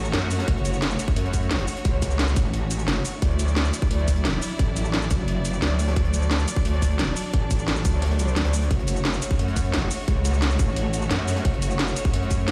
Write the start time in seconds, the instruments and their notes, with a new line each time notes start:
Already playing: wobble bass A1, string section A3 F#4 C#5
0.05 shaker
0.13 wobble bass F#2, snare, closed hi-hat
0.30 snare, closed hi-hat, open hi-hat, shaker
0.39 snare, closed hi-hat
0.47 wobble bass F#1, kick, closed hi-hat
0.57 closed hi-hat
0.65 closed hi-hat, shaker
0.74 shaker
0.82 snare, closed hi-hat
0.91 snare, shaker
0.99 snare, closed hi-hat, shaker
1.08 kick, snare
1.16 wobble bass F#2, closed hi-hat
1.26 closed hi-hat
1.33 kick, closed hi-hat, shaker
1.42 closed hi-hat
1.51 snare, closed hi-hat
1.59 closed hi-hat
1.67 closed hi-hat, open hi-hat, shaker
1.77 closed hi-hat
1.84 wobble bass C#2, kick, closed hi-hat
2.02 kick, snare, closed hi-hat, shaker
2.11 snare, shaker
2.19 snare, closed hi-hat
2.28 shaker
2.36 wobble bass A1, kick, closed hi-hat, shaker
2.44 snare
2.53 closed hi-hat
2.71 closed hi-hat, shaker
2.79 shaker
2.88 wobble bass F#1, snare, closed hi-hat
3.05 snare, closed hi-hat, open hi-hat, shaker
3.22 wobble bass D2, string section F#3 E4 D5, kick, closed hi-hat
3.31 closed hi-hat
3.39 closed hi-hat, shaker
3.48 shaker
3.56 snare, closed hi-hat
3.65 snare, shaker
3.73 snare, closed hi-hat, shaker
3.82 kick, snare
3.91 wobble bass D2, closed hi-hat
3.98 closed hi-hat
4.08 kick, closed hi-hat, shaker
4.16 closed hi-hat
4.24 snare, closed hi-hat
4.41 open hi-hat, shaker
4.59 wobble bass A1, kick, closed hi-hat
4.76 snare, closed hi-hat, shaker
4.85 snare, shaker
4.93 snare, closed hi-hat
5.02 shaker
5.11 wobble bass F#1, kick, closed hi-hat, shaker
5.19 snare
5.28 closed hi-hat
5.45 closed hi-hat, shaker
5.54 shaker
5.62 wobble bass D2, snare, closed hi-hat
5.79 snare, closed hi-hat, open hi-hat, shaker
5.88 snare, closed hi-hat
5.96 wobble bass D2, string section D4, kick, closed hi-hat
6.05 closed hi-hat
6.14 closed hi-hat, shaker
6.22 shaker
6.30 snare, closed hi-hat
6.39 snare, shaker
6.48 snare, closed hi-hat, shaker
6.56 kick, snare
6.65 wobble bass D2, closed hi-hat
6.73 closed hi-hat
6.82 kick, closed hi-hat, shaker
6.91 closed hi-hat
6.99 snare, closed hi-hat
7.16 open hi-hat, shaker
7.33 wobble bass A1, kick, closed hi-hat
7.50 kick, closed hi-hat, shaker
7.59 shaker
7.68 snare, closed hi-hat
7.76 snare, shaker
7.84 wobble bass D2, kick, closed hi-hat, shaker
7.93 snare
8.02 snare, closed hi-hat
8.06 snare, closed hi-hat
8.11 snare, closed hi-hat
8.19 snare, closed hi-hat, shaker
8.28 shaker
8.36 wobble bass D2, snare, closed hi-hat
8.45 snare, closed hi-hat
8.54 open hi-hat, shaker
8.62 closed hi-hat
8.71 wobble bass F#1, string section A3 F#4 C#5, kick, closed hi-hat
8.79 closed hi-hat
8.87 closed hi-hat, shaker
8.96 shaker
9.05 snare, closed hi-hat
9.14 snare, shaker
9.22 snare, closed hi-hat, shaker
9.30 kick, snare
9.39 wobble bass F#2, closed hi-hat
9.48 closed hi-hat
9.56 kick, closed hi-hat, shaker
9.65 closed hi-hat
9.74 snare, closed hi-hat
9.91 open hi-hat, shaker
10.08 wobble bass C#2, kick, closed hi-hat
10.25 snare, closed hi-hat, shaker
10.34 snare, shaker
10.42 snare, closed hi-hat
10.51 shaker
10.59 wobble bass A1, kick, closed hi-hat, shaker
10.68 snare
10.76 closed hi-hat
10.94 closed hi-hat, shaker
11.02 shaker
11.10 wobble bass F#2, snare, closed hi-hat
11.27 snare, closed hi-hat, open hi-hat, shaker
11.36 snare, closed hi-hat
11.45 wobble bass F#1, kick, closed hi-hat
11.54 closed hi-hat
11.62 closed hi-hat, shaker
11.71 shaker
11.79 snare, closed hi-hat
11.87 snare, shaker
11.96 snare, closed hi-hat, shaker
12.05 kick, snare
12.14 wobble bass F#2, closed hi-hat
12.23 closed hi-hat
12.30 kick, closed hi-hat, shaker
12.40 closed hi-hat
12.48 snare, closed hi-hat